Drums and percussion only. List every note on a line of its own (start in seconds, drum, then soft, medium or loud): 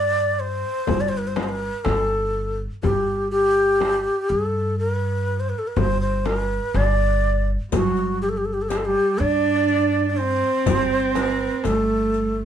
0.39 darbuka ka soft
0.87 frame drum medium
0.87 darbuka dum medium
1.36 darbuka tek medium
1.36 frame drum medium
1.85 darbuka tek medium
1.85 frame drum medium
2.34 darbuka ka soft
2.83 frame drum medium
2.83 darbuka dum medium
3.08 darbuka ka soft
3.32 darbuka ka soft
3.81 darbuka tek medium
3.81 frame drum medium
4.79 darbuka ka soft
5.28 darbuka ka soft
5.77 frame drum medium
5.77 darbuka dum medium
6.26 darbuka tek medium
6.26 frame drum medium
6.75 darbuka tek medium
6.75 frame drum medium
7.24 darbuka ka soft
7.72 riq medium
7.72 frame drum medium
7.72 darbuka dum medium
7.97 riq soft
7.97 darbuka ka soft
8.22 darbuka ka soft
8.70 riq soft
8.70 darbuka tek medium
8.70 frame drum medium
9.68 riq soft
10.18 riq soft
10.18 darbuka ka soft
10.66 riq medium
10.66 darbuka dum medium
10.66 frame drum medium
11.15 riq soft
11.15 darbuka tek medium
11.15 frame drum medium
11.64 riq soft
11.64 darbuka tek medium
11.64 frame drum medium
12.14 riq soft
12.14 darbuka ka soft